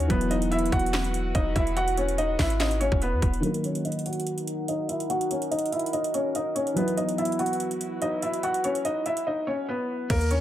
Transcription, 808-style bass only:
0, 0, Header, 1, 2, 480
1, 0, Start_track
1, 0, Tempo, 416667
1, 115, Time_signature, 4, 2, 24, 8
1, 11988, End_track
2, 0, Start_track
2, 0, Title_t, "808-style bass"
2, 0, Program_c, 0, 38
2, 115, Note_on_c, 0, 28, 114
2, 806, Note_off_c, 0, 28, 0
2, 834, Note_on_c, 0, 28, 108
2, 1525, Note_off_c, 0, 28, 0
2, 1554, Note_on_c, 0, 28, 107
2, 1785, Note_off_c, 0, 28, 0
2, 1794, Note_on_c, 0, 28, 102
2, 2716, Note_off_c, 0, 28, 0
2, 2754, Note_on_c, 0, 32, 104
2, 3337, Note_off_c, 0, 32, 0
2, 3362, Note_on_c, 0, 28, 108
2, 3601, Note_on_c, 0, 40, 106
2, 3619, Note_off_c, 0, 28, 0
2, 3709, Note_off_c, 0, 40, 0
2, 3714, Note_on_c, 0, 28, 100
2, 3945, Note_off_c, 0, 28, 0
2, 11635, Note_on_c, 0, 39, 112
2, 11988, Note_off_c, 0, 39, 0
2, 11988, End_track
0, 0, End_of_file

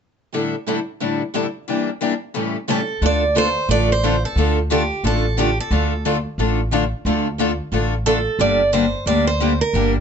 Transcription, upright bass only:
0, 0, Header, 1, 2, 480
1, 0, Start_track
1, 0, Key_signature, -1, "minor"
1, 0, Tempo, 335946
1, 479, Time_signature, 4, 2, 24, 8
1, 14292, End_track
2, 0, Start_track
2, 0, Title_t, "Upright bass"
2, 0, Program_c, 0, 32
2, 4307, Note_on_c, 0, 38, 73
2, 5083, Note_off_c, 0, 38, 0
2, 5268, Note_on_c, 0, 33, 72
2, 6044, Note_off_c, 0, 33, 0
2, 6226, Note_on_c, 0, 38, 73
2, 7002, Note_off_c, 0, 38, 0
2, 7195, Note_on_c, 0, 33, 71
2, 7968, Note_off_c, 0, 33, 0
2, 8154, Note_on_c, 0, 38, 88
2, 8926, Note_off_c, 0, 38, 0
2, 9115, Note_on_c, 0, 33, 72
2, 9886, Note_off_c, 0, 33, 0
2, 10073, Note_on_c, 0, 38, 81
2, 10845, Note_off_c, 0, 38, 0
2, 11030, Note_on_c, 0, 33, 71
2, 11802, Note_off_c, 0, 33, 0
2, 11984, Note_on_c, 0, 31, 79
2, 12758, Note_off_c, 0, 31, 0
2, 12945, Note_on_c, 0, 38, 76
2, 13718, Note_off_c, 0, 38, 0
2, 13909, Note_on_c, 0, 31, 80
2, 14292, Note_off_c, 0, 31, 0
2, 14292, End_track
0, 0, End_of_file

